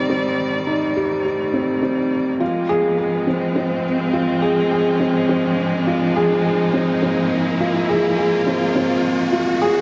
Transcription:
Already playing: C2 D#3 G3 C4 D#4 G4 D5, riser
0.10 C4
0.67 D#4
0.96 G4
1.25 G4
1.54 C4
1.82 C4
2.40 C2 F3 G#3 C4 F4
2.69 G#4
2.98 G#4
3.27 C4
3.56 C4
4.13 F4
4.42 G#4
4.71 G#4
5.00 C4
5.29 C4
5.87 F4
6.16 G#4
6.45 G#4
6.73 C4
7.02 A#3 C4
7.60 F4
7.89 G#4
8.18 G#4
8.47 C4
8.75 C4
9.33 F4
9.62 G#4

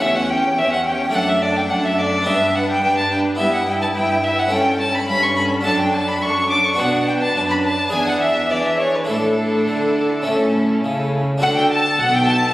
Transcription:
0.00 E2 C#4 E4 G4 E5
0.15 F#5
0.29 C#4 G4 G5
0.57 E2 C#4 G4 E5
0.72 F#5
0.86 C#4 G4 G5
1.10 A3 D4 A4
1.14 F#2 D4 F#5
1.28 E5
1.42 D4 A4 D5
1.56 G5
1.70 F#2 D4 A4 F#5
1.85 E5
1.99 D4 A4 D5
2.23 B3 D4 G4 E5
2.27 G2 D4 B4 E5
2.55 D4 B4 F#5
2.70 G5
2.83 G2 D4 B4 G5
2.98 A5
3.11 D4 B4 G5
3.35 B3 E4 G4 E5
3.39 G2 B4 E5
3.54 F#5
3.67 E4 B4 G5
3.81 A5
3.95 G2 E4 B4 G5
4.23 E4 B4 E5
4.38 F#5
4.47 C#4 E4 A4
4.52 G2 C#4 A4 G5
4.80 C#4 A4 A5
4.94 B5
5.08 G2 C#4 A4 B5
5.22 C#6
5.36 C#4 A4 B5
5.61 D4 F#4 A4 A5
5.65 F#2 D4 A4 A5
5.79 G5
5.93 D4 A4 A5
6.08 B5
6.22 F#2 D4 A4 C#6
6.50 D4 A4 D6
6.64 C#6
6.74 D4 F#4 B4
6.78 B2 D4 B4 F#5
7.07 G5
7.22 A5
7.35 F#2 A5
7.50 B5
7.64 A5
7.89 D4 G#4 B4 G#5
7.93 E2 D4 G#4 G#5
8.06 F#5
8.21 E5
8.50 E3 D4 G#4 D5
8.65 E5
8.79 C#5
8.94 B4
9.05 D4 E4 A4
9.09 A2 D4 E4 A4
9.68 D3
10.22 A2 C#4 E4 A4
10.26 A2 C#4 E4
10.84 C#3
11.38 D4 F#4 A4
11.42 D2 D3 A4 F#5
11.56 G5
11.71 A5
11.99 B1 B2 F#5
12.13 G5
12.28 A5

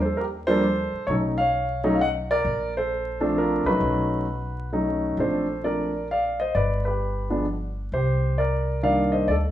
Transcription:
Already playing: D#2
0.02 A4 C5
0.17 G4 A#4
0.47 F3 G3 A#3 D4 A4 C5
0.93 muted upright bass stroke
1.07 B1 F#3 A3 C#4 D#4 A4 C#5
1.38 C#5 F5
1.84 F#3 A3 C#4 D#4
1.95 F5
2.01 D#5 F#5
2.31 A#4 D5
2.45 A#1
2.77 A4 C5
3.20 F3 A3 C4 D4
3.38 F4 A#4
3.65 A#1 F#3 A3 C#4 D#4 F#4 B4
3.81 B1
4.72 F#3 A3 C#4 D#4
5.17 A#1 F3 A3 C4 D4 A4 C5
5.63 F3 A3 C4 D4 A#4 D5
6.11 D5 F5
6.40 C5 D#5
6.55 G1 B4 D5
6.85 G4 B4
7.30 F3 G#3 B3 D4
7.92 C2 G4 C5
8.38 A#4 D5
8.83 D#3 G3 A#3 D4 D5 F5
9.12 C5 D#5
9.28 D2 A4 D5

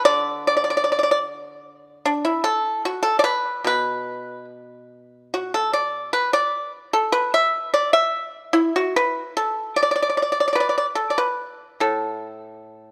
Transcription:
0.05 D3 D5
0.47 D5
0.57 D5
0.64 D5
0.70 D5
0.77 D5
0.84 D5
0.92 D5
0.99 D5
1.03 D5
1.11 D5
2.06 D4
2.25 E4
2.44 A4
2.85 F#4
3.03 A4
3.19 D5
3.24 B4
3.64 B2 B4
5.34 F#4
5.54 A4
5.73 D5
6.13 B4
6.33 D5
6.93 A4
7.12 B4
7.34 E5
7.74 D5
7.93 E5
8.53 E4
8.76 F#4
8.96 B4
9.37 A4
9.76 D5
9.83 D5
9.91 D5
9.96 D5
10.03 D5
10.10 D5
10.17 D5
10.22 D5
10.32 D5
10.40 D5
10.48 D5
10.53 B4 D5
10.60 D5
10.69 D5
10.78 D5
10.95 A4
11.10 D5
11.18 B4
11.80 A2 A4

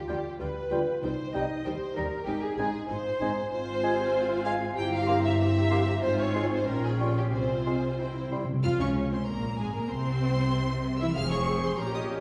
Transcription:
Already playing: F4
0.08 D2 D3 G3 F4 G4 G5
0.38 D2 D3 G3 F4 G4 B4 G5
0.69 D2 D3 G3 F4 G5
1.01 C2 C3 G3 D#4 C5 G5
1.32 C2 C3 G3 D#4 D#5 G5
1.64 D#2 D#3 G3 D#4 G4 C5 G5
1.96 D#2 D#3 G3 D#4 A#4 G5 A#5
2.25 G#1 G#2 C4 D#4 G4 G#5
2.42 G#4
2.56 G#1 G#2 G#3 C4 D#4 G#4 G#5
2.88 G#1 G#2 C4 D#4 F4 C5 G#5
3.19 G#1 G#2 G#3 C4 D#4 G#5
3.52 G#1 G#2 C4 F4 C5 G#5
3.83 G#3 F4 G4 G#5
4.16 F4
4.44 G#3 F4 F5 G#5
4.76 G1 G2 C4 E4 G4 G5 A#5
4.91 F5
5.06 A#3 G4 C6
5.24 E5
5.39 C4 G4 E5 A#5
5.70 A#3 G4 C6
6.02 G#1 G#2 C4 D#4 F4 C5 G#5
6.20 C#5
6.34 G#3 F4 C6
6.51 C5
6.65 A#1 A#2 C#4 F4 A#4 G5
6.84 G#4
6.99 G3 F4 C#6
7.17 G4
7.32 C2 C3 C4 F4 C5 G#5
7.66 G#3 F4 C6
7.98 C3 C4 E4 G5
8.07 C3
8.13 C3
8.21 C3
8.29 C3 G3 E4 C6
8.37 C3
8.45 C3
8.53 C3
8.63 F2 F3 F4 F5 F6
8.79 C#2 C#3 C#4 C#5 C#6
9.11 C3 C4 C5 C6
9.27 A#1 A#2 A#3 A#4 A#5
9.59 G#1 G#2 G#3 G#4 G#5
9.73 A#2 A#3 A#4 A#5
9.90 C2 C3 C4 C5 C6
10.99 E3 E4 E5 E6
11.15 F1 F2 C4 G#4 F5 F6
11.31 C#5 C#6
11.62 C5 C6
11.76 A#1 A#2 C#4 G4 A#4 A#5
11.93 D#5 D#6

